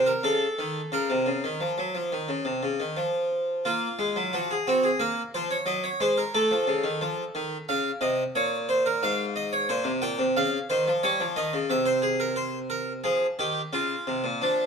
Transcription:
Already playing: C3
0.06 A#4
0.23 C#3 A4
0.59 D#3
0.92 C#3 A#4
1.10 C3
1.26 C#3
1.44 D#3
1.60 F3
1.78 F#3
1.95 F3
2.12 D#3
2.28 C#3
2.45 C3
2.63 C#3
2.80 D#3
2.97 F3
3.65 A#3 F4
3.99 G#3
4.16 F#3
4.33 F3 F#4
4.51 G#4
4.67 C4 F#4
4.83 G#4
5.00 A#3 A#4
5.34 F3 C5
5.51 C#5
5.66 F#3 D#5
5.84 C#5
6.00 G#3 C5
6.17 A#4
6.34 A3 A4
6.51 F3
6.67 C#3
6.84 D#3
7.01 F3
7.35 D#3
7.69 C#3 F5
8.01 C3 D#5
8.35 A#2 C#5
8.69 C5
8.86 A#4
9.03 G#2 F5
9.36 D#5
9.53 C#5
9.69 A#2 C5
9.84 C3
10.02 A#2 G5
10.19 C3
10.37 C#3 F5
10.70 D#3 C5
10.88 F3
11.03 G3 C#5
11.20 F3
11.36 D#3 D#5
11.53 C#3
11.70 C3 E5
11.86 C5
12.02 G#4
12.20 A#4
12.36 C5
12.70 A#4
13.04 F3 G#4
13.39 D#3 G4
13.73 C#3 F4
14.07 C3
14.24 A#2
14.42 F3 D4

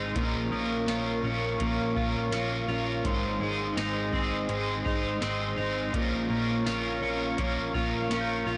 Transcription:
Already playing: G#1 G#2 G#3 C4 D#4 G#4 C5 D#5 C6
0.15 A#1 A#2 F3 A#3 C#4 F4 A#4 C#5 F5 C#6, kick, closed hi-hat
0.51 A#1 C#4 F4 A#4 D#6
0.55 A#3
0.87 A#1 A#3 C#4 F4, snare, closed hi-hat, tambourine
0.91 A#4
1.22 A#1 C#4 F4 A#4
1.27 A#3
1.59 A#1 A#2 F3 A#3 C#4 F4 A#4, kick, closed hi-hat
1.95 A#1 C#4 F4 A#4, kick
1.99 A#3
2.31 A#1 A#3 C#4 F4, snare, closed hi-hat, tambourine
2.36 A#4
2.67 A#1 C#4 F4 A#4
2.71 A#3
3.04 G#1 G#2 D#3 G#3 C4 D#4 G#4 C5 D#5 C6, kick, closed hi-hat
3.40 G#1 C4 D#4 C5
3.44 G#3
3.76 G#1 G#3 C4 D#4, snare, closed hi-hat, tambourine
3.80 C5
4.12 G#1 C4 D#4 C5, kick
4.16 G#3
4.49 G#1 G#2 D#3 G#3 C4 D#4 C5, closed hi-hat
4.85 G#1 C4 D#4 C5, kick
4.89 G#3
5.20 G#1 G#3 C4 D#4, snare, closed hi-hat, tambourine
5.25 C5
5.56 G#1 C4 D#4 C5
5.61 G#3
5.93 A#1 A#2 F3 A#3 C#4 F4 A#4 C#5 F5 C#6, kick, closed hi-hat
6.28 A#1 C#4 F4 A#4
6.33 A#3
6.65 A#1 A#3 C#4 F4, snare, closed hi-hat, tambourine
6.69 A#4
7.01 A#1 C#4 F4 A#4
7.05 A#3
7.37 A#1 A#2 F3 A#3 C#4 F4 A#4, kick, closed hi-hat
7.74 A#1 C#4 F4 A#4 C#6, kick
7.78 A#3
7.97 F6
8.09 A#1 A#3 C#4 F4, snare, closed hi-hat, tambourine
8.14 A#4
8.21 G6
8.46 A#1 C#4 F4 A#4
8.50 A#3

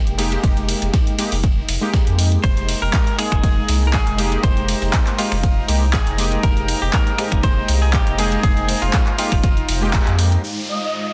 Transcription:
Already playing: G#3 A#3 D#4 G4 A#4 G5
0.07 F1, closed hi-hat
0.18 G#3 A#3 D#4 G4, open hi-hat, ride
0.32 closed hi-hat, ride
0.44 F1, kick, closed hi-hat, ride
0.57 closed hi-hat
0.69 open hi-hat, ride
0.82 F1, closed hi-hat, ride
0.94 kick, snare, closed hi-hat, ride
1.07 closed hi-hat
1.18 G#3 A#3 D#4 G4, open hi-hat, ride
1.32 F1, open hi-hat
1.44 kick, closed hi-hat, ride
1.69 F1, open hi-hat, ride
1.81 G#3 A#3 D#4 G4
1.94 kick, snare, closed hi-hat, ride
2.07 F2, closed hi-hat
2.19 open hi-hat
2.32 closed hi-hat
2.44 F1 C5 D#5 G5 A#5, kick, closed hi-hat, ride
2.57 closed hi-hat
2.69 open hi-hat, ride
2.82 F1 A#4
2.93 kick, snare, clap, closed hi-hat, ride
3.07 closed hi-hat
3.18 G#3 A#3 D#4 G#4 C5 F5, finger snap, open hi-hat, ride
3.32 F1, finger snap, kick, closed hi-hat
3.44 kick, closed hi-hat, ride
3.69 C2, snare, open hi-hat, ride
3.87 A#4
3.93 G#4, kick, snare, clap, closed hi-hat, ride
4.07 F1, closed hi-hat
4.18 G#3 A#3 D#4 G4, open hi-hat, ride
4.32 closed hi-hat, ride
4.43 F1 C5, kick, closed hi-hat, ride
4.57 closed hi-hat
4.68 open hi-hat, ride
4.82 F1, ride
4.93 kick, snare, clap, closed hi-hat, ride
5.07 clap, closed hi-hat
5.18 G#3 A#3 D#4 F4 G4, open hi-hat, ride
5.32 F1, finger snap, open hi-hat
5.43 kick, closed hi-hat, ride
5.68 C2 G#3 A#3 D#4 G4, open hi-hat, ride
5.93 G#4, kick, snare, clap, closed hi-hat, ride
6.07 F1, closed hi-hat
6.18 G#3 A#3 D#4 G4, open hi-hat
6.32 closed hi-hat
6.43 F1 A#4, kick, closed hi-hat, ride
6.57 closed hi-hat
6.68 open hi-hat, ride
6.82 F1 G4
6.93 A#4, kick, snare, clap, closed hi-hat, ride
7.07 closed hi-hat
7.18 G#3 A#3 D#4 G4, finger snap, open hi-hat, ride
7.32 F1, finger snap, kick, closed hi-hat
7.43 C5, kick, closed hi-hat, ride
7.68 C2, snare, open hi-hat, ride
7.82 G#4
7.93 G4, kick, snare, clap, closed hi-hat, ride
8.07 F1, closed hi-hat
8.18 G#3 A#3 D#4 G#4, open hi-hat, ride
8.32 closed hi-hat, ride
8.43 F1 G#4, kick, closed hi-hat, ride
8.57 closed hi-hat
8.69 open hi-hat, ride
8.82 F1 F4, ride
8.93 kick, snare, clap, closed hi-hat, ride
9.07 clap, closed hi-hat
9.18 G#3 A#3 D#4 F4 G4, open hi-hat, ride
9.32 F1, finger snap, kick, open hi-hat
9.43 kick, closed hi-hat, ride
9.57 closed hi-hat
9.69 F1, open hi-hat, ride
9.81 G#3 A#3 D#4 G4
9.93 kick, snare, clap, closed hi-hat, ride
10.07 F2, closed hi-hat
10.19 open hi-hat
10.32 closed hi-hat
10.44 F4 C5 D#5 G5 A#5, downlifter
10.69 D#5

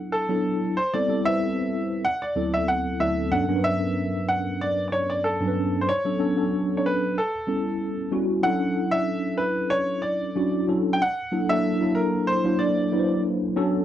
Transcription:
Already playing: F#3 B3 D4 E4 A4 F#5
0.12 A4
0.29 F#3 B3 D4 E4 A4
0.77 C5
0.93 G3 B3 C4 E4 A4 D5
1.08 G3 B3 C4 E4 A4
1.25 G3 C4 E4 B4 C5 E5
2.05 F#5
2.22 D5
2.35 D2 F#3 B3 C4 E4 A4
2.54 E5
2.68 F#5
2.99 D2 F#3 B3 C4 E4 A4 E5
3.31 G2 F#3 B3 C#4 D4 A4 F#5
3.48 G2 F#3 B3 C#4 D4 A#4
3.56 B4
3.64 E5
4.28 F#5
4.61 D5
4.88 D5
4.92 C#5
5.10 D5
5.24 A4
5.40 G2 F#3 B3 C#4 D4 A4
5.48 B4
5.81 C5
5.89 C#5
6.05 F#3 B3 C#4 D4 A4
6.19 F#3 B3 C#4 D4 A4
6.37 F#3 B3 C#4 D4 A4
6.77 C#5
6.86 B4
7.18 A4
7.47 G3 B3 C#4 E4 A4
8.11 G3 B3 C#4 E4 F#4
8.43 F#3 C#4 D4 E4 A4 F#5
8.91 E5
9.38 B4
9.70 C#5
10.02 D5
10.35 F#3 C#4 D4 E4 F#4
10.68 F#3 C#4 D4 E4 A4
10.93 G5
11.02 F#5
11.32 F#3 A#3 D4 E4 A4
11.49 F#3 A#3 D4 E4 A4 E5
11.81 F#3 A#3 D4 E4 A4
11.95 A#4
12.27 C5
12.44 F#3 A#3 D4 E4 C5
12.59 D5
12.92 F#3 A#3 D4 E4 B4
12.99 C5
13.56 F#3 B3 C#4 D4 A4

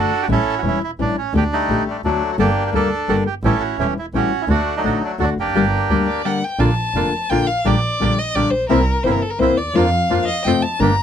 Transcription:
Already playing: D3 A3 D4 F#4 A4
0.22 G4
0.29 A1 E3 G3 C#4 E4 A4
0.58 F#4
0.63 E1 E3 G3 C#4 E4
0.68 E4
0.84 E4
0.99 A1 E3 G3 C#4 D4 E4
1.18 C#4
1.34 D2 D3 A3 D4 G4
1.53 G3 A3 D#4
1.68 A1 D3 A3 D4 G4
1.90 D4
2.04 D2 D3 F#3 A3 D4 F#4
2.32 F#4
2.38 G1 D3 G3 A#3 D4 G4 A4
2.67 G4
2.72 D2 D3 G3 A#3 D4 G4 A4
3.08 G1 D3 G3 A#3 D4 F#4 G4 A4
3.27 G4
3.43 A1 E3 G3 A3 C#4 E4 G4 A4
3.60 F#4
3.79 E1 E3 G3 A3 C#4 E4 G4
3.99 E4
4.13 A1 E3 G3 A3 C#4 E4 F#4 G4
4.17 C#4
4.41 E4
4.48 D2 D3 A3 D4 F#4
4.77 F#3 A3 D#4
4.84 A1 D3 A3 D4 F#4
5.05 D4
5.18 D2 D3 A3 D4 F#4
5.23 D4
5.38 F1 A#3 D4 G4
5.54 G1 D3 G3 A#3 D4 G4
5.89 D2 D3 G3 A#3 D4 G4
6.07 D5
6.24 D3 G3 A#3 D4 G4 F#5
6.44 G5
6.59 A#1 D3 A#3 D4 F4 A5
6.95 F1 D3 A#3 D4 F4
7.29 A#1 D3 A#3 D4 F4 G5
7.47 F5
7.65 A#1 D3 G3 A#3 D4 G4 D5
8.00 A#1 D3 G3 A#3 D4 G4
8.18 D#5
8.35 A#1 D3 G3 A#3 D4 G4 D5
8.50 A#1 C5
8.69 C2 C3 E3 A#3 C4 E4 A#4
9.03 G1 C3 E3 A#3 C4 E4 C5
9.12 A#4
9.22 A4
9.30 A#4
9.38 C2 C3 E3 A#3 C4 E4 C5
9.57 D#2 D5
9.74 F2 F3 A#3 D4 F4 F5
10.09 F2 F3 A#3 D4 F4
10.23 D#5 F5
10.44 F2 C3 F3 A3 C4 F4 G5
10.62 A5
10.79 G1 D3 G3 A#3 D4 G4 A#5

